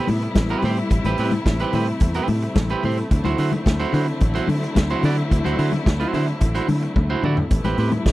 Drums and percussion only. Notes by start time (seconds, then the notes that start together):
0.07 open hi-hat, high conga
0.22 closed hi-hat
0.35 kick, snare, closed hi-hat, high conga
0.49 closed hi-hat
0.62 open hi-hat, low conga
0.77 closed hi-hat
0.90 kick, closed hi-hat, muted conga
1.04 closed hi-hat, muted conga, high conga
1.18 open hi-hat
1.31 closed hi-hat, high conga
1.46 kick, snare, closed hi-hat, muted conga
1.59 closed hi-hat, muted conga
1.73 open hi-hat, low conga
1.87 closed hi-hat
2.00 kick, closed hi-hat, muted conga
2.14 closed hi-hat
2.28 open hi-hat, high conga
2.42 closed hi-hat
2.56 kick, snare, closed hi-hat, high conga
2.69 closed hi-hat, muted conga
2.83 open hi-hat, low conga
2.97 closed hi-hat
3.11 kick, closed hi-hat
3.24 closed hi-hat, muted conga, high conga
3.38 open hi-hat
3.52 closed hi-hat, high conga
3.66 kick, snare, closed hi-hat, muted conga
3.79 closed hi-hat, muted conga
3.92 open hi-hat, low conga
4.08 closed hi-hat
4.21 kick, closed hi-hat, muted conga
4.34 closed hi-hat, muted conga
4.48 open hi-hat, high conga
4.63 closed hi-hat
4.75 kick, snare, closed hi-hat, high conga
4.90 closed hi-hat
5.03 open hi-hat, low conga
5.18 closed hi-hat
5.31 kick, closed hi-hat, muted conga
5.44 closed hi-hat, high conga
5.59 open hi-hat
5.72 closed hi-hat, high conga
5.86 kick, snare, closed hi-hat
6.00 closed hi-hat, muted conga
6.13 open hi-hat, low conga
6.28 closed hi-hat
6.41 kick, closed hi-hat
6.54 closed hi-hat, muted conga
6.68 open hi-hat, high conga
6.83 closed hi-hat
6.96 kick, high tom, high conga
7.10 mid tom, muted conga
7.24 mid tom, high conga, low conga
7.37 floor tom
7.51 kick, closed hi-hat, muted conga
7.64 closed hi-hat, high conga
7.78 open hi-hat
7.92 closed hi-hat, high conga
8.06 kick, snare, closed hi-hat, muted conga